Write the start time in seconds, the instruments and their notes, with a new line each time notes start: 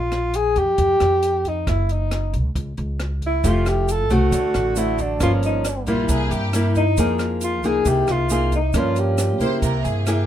Already playing: upright bass A#1, alto saxophone F4
0.12 cross-stick, closed hi-hat
0.34 alto saxophone G#4, closed hi-hat
0.56 upright bass F2, alto saxophone G4, kick, closed hi-hat
0.78 upright bass F2, kick, closed hi-hat
1.00 upright bass F2, cross-stick, closed hi-hat
1.23 closed hi-hat
1.45 alto saxophone D#4, kick, closed hi-hat
1.67 upright bass F#1, alto saxophone E4, kick, cross-stick, closed hi-hat
1.89 alto saxophone D#4, closed hi-hat
2.11 cross-stick, closed hi-hat
2.33 upright bass C#2, kick, closed hi-hat
2.55 upright bass C#2, kick, closed hi-hat
2.77 upright bass C#2, closed hi-hat
3.00 cross-stick, closed hi-hat
3.22 kick, closed hi-hat
3.27 alto saxophone E4
3.44 upright bass F1, nylon-string guitar F3 A3 E4 G4, alto saxophone F4, kick, closed hi-hat, shaker
3.66 alto saxophone G4, cross-stick, closed hi-hat, shaker
3.88 alto saxophone A4, closed hi-hat, shaker
4.10 upright bass C2, nylon-string guitar A3 C4 F#4, alto saxophone F#4, kick, closed hi-hat, shaker
4.32 upright bass D2, nylon-string guitar D3, kick, closed hi-hat, shaker
4.54 upright bass A1, cross-stick, closed hi-hat, shaker
4.76 nylon-string guitar A3 C4 F#4, alto saxophone E4, closed hi-hat, shaker
4.98 alto saxophone D4, kick, closed hi-hat, shaker
5.20 upright bass G1, nylon-string guitar G2 F3 A#3 C#4, alto saxophone F4, kick, cross-stick, closed hi-hat, shaker
5.43 alto saxophone D#4, closed hi-hat, shaker
5.65 cross-stick, closed hi-hat, shaker
5.87 upright bass A#1, nylon-string guitar G3 A#3 E4, violin section F4, kick, closed hi-hat, shaker
6.09 upright bass C2, nylon-string guitar C3, violin section G#4, kick, closed hi-hat, shaker
6.31 upright bass G2, violin section G4, closed hi-hat, shaker
6.53 nylon-string guitar G3 A#3 E4, cross-stick, closed hi-hat, shaker
6.75 alto saxophone D#4, kick, closed hi-hat, shaker
6.97 upright bass F2, nylon-string guitar F3 A#3 D#4 G#4, kick, closed hi-hat, shaker
7.19 cross-stick, closed hi-hat, shaker
7.41 alto saxophone F4, closed hi-hat, shaker
7.63 upright bass C2, nylon-string guitar A#3 D#4 G#4, alto saxophone G#4, kick, closed hi-hat, shaker
7.85 upright bass C2, nylon-string guitar C3, alto saxophone G4, kick, closed hi-hat, shaker
8.07 upright bass C2, alto saxophone F4, cross-stick, closed hi-hat, shaker
8.30 nylon-string guitar A#3 D#4 G#4, alto saxophone F4, closed hi-hat, shaker
8.52 alto saxophone D#4, kick, closed hi-hat, shaker
8.73 upright bass G2, nylon-string guitar G2 F3 A#3 C#4, kick, cross-stick, closed hi-hat, shaker
8.77 alto saxophone F4
8.96 alto saxophone G4, closed hi-hat, shaker
9.18 cross-stick, closed hi-hat, shaker
9.40 upright bass C#3, nylon-string guitar A#3 E4, violin section C5, kick, closed hi-hat, shaker
9.62 upright bass C2, nylon-string guitar C3, violin section A#4, kick, closed hi-hat, shaker
9.84 upright bass G2, violin section G#4, closed hi-hat, shaker
10.07 nylon-string guitar A#3 E4 G#4, violin section G4, cross-stick, closed hi-hat, shaker